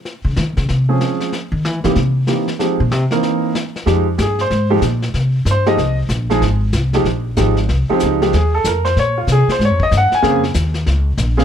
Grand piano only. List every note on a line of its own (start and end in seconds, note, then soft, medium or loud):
0.89 1.30 F3 medium
0.89 1.30 G#3 soft
0.89 1.30 C4 medium
0.89 1.30 C#4 soft
0.89 1.30 G#4 medium
1.84 1.95 E3 medium
1.84 1.95 A#3 medium
1.84 1.95 C4 medium
1.84 1.95 D#4 medium
1.84 1.95 G4 medium
2.27 2.46 E3 soft
2.27 2.46 A#3 soft
2.27 2.45 C4 soft
2.27 2.46 D#4 soft
2.27 2.46 G4 medium
2.59 2.77 F3 medium
2.59 2.77 G#3 medium
2.59 2.77 C4 medium
2.59 2.78 D#4 medium
2.59 2.78 G4 medium
3.11 3.52 E3 medium
3.11 3.53 A#3 medium
3.11 3.53 C4 medium
3.11 3.53 D#4 medium
3.11 3.53 A#4 medium
3.86 4.04 F3 medium
3.86 4.04 G#3 medium
3.86 4.05 D#4 medium
3.86 4.05 G4 medium
4.18 4.20 G4 medium
4.22 4.40 G#4 medium
4.41 4.70 C5 medium
4.70 4.81 F3 medium
4.70 4.81 G#3 medium
4.70 4.81 D#4 medium
4.70 4.81 G4 medium
5.51 5.68 C5 medium
5.66 5.77 F3 medium
5.66 5.77 G#3 medium
5.66 5.77 D#4 medium
5.66 5.77 G4 medium
5.66 5.97 D#5 medium
6.30 6.40 F3 medium
6.30 6.40 G#3 medium
6.30 6.41 D#4 medium
6.30 6.41 G#4 medium
6.94 7.04 F3 medium
6.94 7.04 G#3 medium
6.94 7.04 D#4 medium
6.94 7.05 G4 medium
7.37 7.55 F3 medium
7.37 7.55 G#3 medium
7.37 7.55 D#4 medium
7.37 7.55 G4 medium
7.89 8.19 F3 medium
7.89 8.19 G#3 medium
7.89 8.02 C4 medium
7.89 8.03 D#4 medium
7.89 8.19 G4 medium
8.05 8.20 D#4 medium
8.22 8.32 F3 medium
8.22 8.32 G#3 medium
8.22 8.32 D#4 medium
8.22 8.32 G4 medium
8.35 8.53 G#4 medium
8.54 8.65 A4 medium
8.67 8.85 A#4 medium
8.85 8.96 C5 medium
8.99 9.17 C#5 medium
9.18 9.28 F4 medium
9.32 9.49 G#4 medium
9.52 9.61 C5 medium
9.65 9.82 C#5 medium
9.83 9.93 D#5 loud
9.97 10.14 F#5 medium
10.15 10.43 G#5 loud
10.22 10.41 C#3 medium
10.22 10.41 A#3 medium
10.22 10.41 C4 medium
10.22 10.41 G#4 medium
11.37 11.44 C#3 medium
11.37 11.44 A#3 medium
11.37 11.44 C4 medium
11.37 11.44 G#4 medium